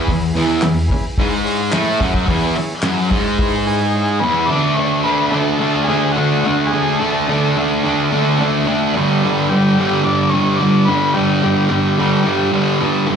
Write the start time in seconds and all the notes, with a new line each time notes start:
0.04 E4 G#4 B4, kick
0.09 E2, open hi-hat
0.33 E2 E3 E4 G#4 B4, open hi-hat
0.61 E2 E4 G#4 B4, snare, clap, open hi-hat
0.87 E4 G#4 B4, muted distorted electric guitar stroke, kick, open hi-hat
1.17 G#2 G#3 E4 G#4 B4, kick, open hi-hat
1.44 E4 G#4 C#5, open hi-hat
1.70 A2 A3 E4 G#4 B4, snare, clap
1.74 open hi-hat
1.98 F#2 F#3 E4 G#4 C#5, kick, open hi-hat
2.14 kick
2.27 E2 E3 E4 G#4 B4, kick, open hi-hat
2.56 E4 G#4 C#5, muted distorted electric guitar stroke, open hi-hat
2.82 F#2 F#3 E4 G#4 B4, snare, clap, open hi-hat
3.10 G#2 G#3 E4 G#4 C#5, kick, open hi-hat
3.37 E4 G#4 B4, kick, open hi-hat
3.65 E4 G#4 B4, open hi-hat
3.93 E4 G#4 C#5
4.20 E2 E3 E4 B4 C#5
4.24 G#4
4.46 D3 A3 D5
4.50 D4
4.74 D3 A3 D4 C#5
5.04 D3 A3 D4 B4
5.29 D3 A3 A4 B4
5.34 D4
5.60 D3 A3 D4
5.84 G#4
5.89 D3 A3 D4
6.12 F#4
6.17 D3 A3 D4
6.42 D3 A3 F#4
6.47 D4
6.67 G#4
6.73 D3 A3 D4
6.99 D3 A3 D4 A4
7.29 D3 A3 D4
7.57 D3 A3 D4
7.84 D3 A3 D4
8.12 D3 A3 D4
8.39 D3 A3 D4
8.66 D3 A3 D4
8.96 G2 D3 G3
9.24 G2 D3 G3
9.49 G2 D3 G3 G4
9.79 G2 D3 G3
10.04 G2 D3 G3 D5
10.30 G2 C#5
10.35 D3 G3
10.56 D5
10.61 G2 D3 G3
10.85 G2 D3 B4
10.90 G3
11.14 G2 D3 G3 G4
11.43 G2 D3 G3
11.70 G2 D3 G3 G4
11.98 G2 D3 G3
12.24 G2 D3 G3
12.52 G2 D3 G3
12.80 G2 D3 G3
13.07 G2 D3 G3